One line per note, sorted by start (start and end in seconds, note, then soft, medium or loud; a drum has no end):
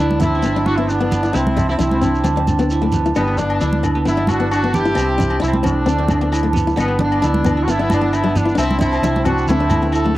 0.00 0.41 D2 medium
0.00 0.18 B3 medium
0.00 1.11 B3 medium
0.00 0.18 D4 medium
0.00 0.22 D4 medium
0.00 0.34 E4 medium
0.11 high conga medium
0.20 0.32 B3 medium
0.20 0.45 D4 medium
0.20 0.67 E4 loud
0.20 low conga medium
0.20 shekere medium
0.24 0.68 C4 medium
0.35 0.67 E4 medium
0.42 1.31 G1 loud
0.42 0.49 B3 medium
0.42 0.57 D4 medium
0.42 shekere medium
0.56 0.68 D4 medium
0.56 0.90 D4 medium
0.66 0.79 D4 medium
0.66 1.79 E4 medium
0.66 0.78 F#4 loud
0.66 high conga medium
0.76 0.90 B3 medium
0.76 0.89 C4 medium
0.76 0.88 E4 medium
0.88 1.35 B3 medium
0.88 1.34 D4 medium
0.88 1.00 D4 medium
0.88 shekere medium
1.00 1.13 B3 medium
1.00 1.56 D4 medium
1.11 1.40 B3 medium
1.11 low conga medium
1.11 shekere medium
1.23 1.29 E4 medium
1.23 shekere soft
1.33 1.77 C2 loud
1.33 1.69 C4 medium
1.33 1.45 D4 medium
1.33 1.67 E4 loud
1.33 shekere medium
1.47 high conga medium
1.56 1.68 D4 medium
1.56 2.02 D4 medium
1.56 low conga medium
1.56 shekere medium
1.69 1.92 C4 medium
1.69 1.75 C4 medium
1.69 1.73 E4 medium
1.69 shekere soft
1.79 2.22 C2 medium
1.79 2.44 C4 medium
1.79 1.91 D4 medium
1.79 2.43 E4 medium
1.79 2.71 E4 medium
1.79 low conga medium
1.79 shekere medium
1.91 2.35 C4 medium
1.91 high conga medium
2.01 2.14 C4 medium
2.01 2.23 D4 medium
2.01 low conga medium
2.01 shekere medium
2.15 shekere soft
2.24 3.11 D2 loud
2.24 2.31 C4 medium
2.24 2.48 D4 medium
2.24 high conga medium
2.24 shekere medium
2.36 3.00 C4 medium
2.36 2.49 D4 medium
2.47 2.59 D4 medium
2.47 high conga medium
2.47 shekere medium
2.59 2.71 B3 medium
2.59 2.82 D4 medium
2.59 shekere soft
2.70 3.60 E4 medium
2.70 shekere medium
2.82 2.94 A3 medium
2.82 3.27 D4 medium
2.92 3.15 B3 medium
2.92 low conga medium
2.92 shekere medium
3.05 3.11 E4 medium
3.05 shekere soft
3.15 3.58 G1 medium
3.15 3.37 G3 medium
3.15 3.95 B3 medium
3.15 3.37 B3 medium
3.15 3.28 D4 medium
3.15 low agogo medium
3.15 shekere medium
3.27 3.38 D4 medium
3.38 3.84 B3 medium
3.38 3.83 D4 medium
3.38 3.83 D4 loud
3.38 3.50 D4 medium
3.38 shekere medium
3.50 low agogo medium
3.61 4.04 D2 medium
3.61 3.73 D4 medium
3.61 4.28 E4 medium
3.61 shekere medium
3.73 high conga medium
3.83 3.95 B3 medium
3.83 4.05 D4 medium
3.83 low agogo medium
3.83 shekere medium
3.95 4.73 B3 medium
4.05 4.92 G1 loud
4.05 4.12 B3 medium
4.05 4.28 B3 medium
4.05 4.17 D4 medium
4.05 4.28 E4 medium
4.05 shekere medium
4.17 4.29 D4 medium
4.17 4.51 D4 medium
4.27 4.52 D4 medium
4.27 5.41 E4 medium
4.27 4.50 F#4 medium
4.27 high conga medium
4.27 low agogo medium
4.27 shekere medium
4.40 4.52 B3 medium
4.51 4.62 D4 medium
4.51 4.73 D4 medium
4.51 4.72 F#4 medium
4.51 low agogo medium
4.51 shekere medium
4.63 4.76 B3 medium
4.63 5.18 D4 medium
4.73 5.01 B3 medium
4.73 5.39 E4 medium
4.73 5.38 G4 loud
4.73 low conga medium
4.73 shekere medium
4.85 4.91 E4 medium
4.85 shekere soft
4.95 5.39 C2 loud
4.95 5.53 C4 medium
4.95 muted nylon-string guitar stroke medium
4.95 low agogo medium
4.95 shekere medium
5.18 5.30 D4 medium
5.18 low conga medium
5.18 shekere loud
5.30 5.64 D4 medium
5.30 low agogo medium
5.40 5.84 C2 medium
5.40 5.52 D4 medium
5.40 6.32 E4 medium
5.40 5.52 E4 medium
5.40 shekere medium
5.45 5.55 C4 medium
5.53 5.99 C4 medium
5.53 high conga medium
5.63 5.75 C4 medium
5.63 5.86 D4 medium
5.63 6.51 D4 medium
5.63 low conga medium
5.63 low agogo medium
5.63 shekere medium
5.68 6.52 A3 medium
5.86 6.73 D2 loud
5.86 5.93 C4 medium
5.86 6.09 D4 medium
5.86 shekere medium
5.98 6.60 C4 medium
5.98 6.11 D4 medium
6.08 6.21 D4 medium
6.08 high conga medium
6.08 low agogo medium
6.08 shekere medium
6.21 6.33 B3 medium
6.21 6.44 D4 medium
6.32 7.22 E4 medium
6.32 low agogo medium
6.32 shekere medium
6.43 6.55 A3 medium
6.43 6.88 D4 medium
6.53 6.76 B3 medium
6.53 low conga medium
6.53 shekere medium
6.67 6.73 E4 medium
6.67 shekere soft
6.76 7.20 G1 loud
6.76 6.99 G3 medium
6.76 8.35 B3 medium
6.76 6.89 D4 medium
6.76 low agogo medium
6.76 shekere medium
6.80 7.00 B3 medium
6.88 6.99 D4 medium
6.99 7.63 B3 medium
6.99 7.45 D4 medium
6.99 7.12 D4 medium
6.99 low conga medium
7.04 7.64 D4 medium
7.12 low agogo medium
7.22 7.65 D2 medium
7.22 7.34 D4 medium
7.22 7.57 E4 medium
7.22 shekere medium
7.34 high conga medium
7.44 7.57 B3 medium
7.44 7.67 D4 medium
7.44 low conga medium
7.44 low agogo medium
7.44 shekere medium
7.57 7.91 E4 medium
7.63 8.53 G1 loud
7.63 7.68 F#4 medium
7.68 7.74 B3 medium
7.68 7.91 B3 medium
7.68 7.80 D4 medium
7.68 7.91 E4 medium
7.68 shekere medium
7.79 7.91 D4 medium
7.79 8.13 D4 medium
7.90 8.12 B3 medium
7.90 8.13 D4 loud
7.90 9.03 E4 medium
7.90 high conga medium
7.90 low agogo medium
7.90 shekere medium
8.01 8.13 B3 medium
8.13 8.35 B3 medium
8.13 8.24 D4 medium
8.13 8.36 E4 medium
8.13 low agogo medium
8.13 shekere medium
8.24 8.36 G3 medium
8.24 8.79 D4 medium
8.35 8.64 B3 medium
8.35 8.58 B3 medium
8.35 8.58 D4 medium
8.35 low conga medium
8.35 shekere medium
8.45 8.51 E4 medium
8.45 shekere soft
8.55 9.00 C2 medium
8.55 8.91 C4 medium
8.55 8.79 C4 medium
8.55 8.68 D4 medium
8.55 8.78 E4 loud
8.55 low agogo medium
8.55 shekere medium
8.71 high conga medium
8.79 9.22 C4 medium
8.79 8.91 D4 medium
8.79 9.25 D4 medium
8.79 9.22 E4 loud
8.79 low conga medium
8.79 shekere medium
8.92 9.16 C4 medium
8.92 low agogo medium
8.92 shekere soft
9.02 9.45 C2 medium
9.02 9.15 D4 medium
9.02 9.69 E4 medium
9.02 low conga medium
9.02 shekere medium
9.16 9.60 C4 medium
9.16 high conga medium
9.25 9.38 C4 medium
9.25 9.48 D4 medium
9.25 9.49 D4 medium
9.25 9.48 F#4 loud
9.25 low conga medium
9.25 low agogo medium
9.25 shekere medium
9.38 shekere soft
9.47 10.18 D2 medium
9.47 10.12 A3 medium
9.47 9.56 C4 medium
9.47 9.81 D4 medium
9.47 9.94 E4 medium
9.47 high conga medium
9.47 shekere medium
9.60 10.18 C4 medium
9.60 9.72 D4 medium
9.70 9.92 E4 medium
9.70 high conga medium
9.70 low agogo medium
9.70 shekere medium
9.82 9.95 B3 medium
9.82 10.04 D4 medium
9.92 10.18 E4 medium
9.92 10.15 E4 medium
9.92 10.14 A4 loud
9.92 low agogo medium
9.92 shekere medium
10.04 10.17 A3 medium
10.04 10.18 D4 medium
10.15 10.18 B3 medium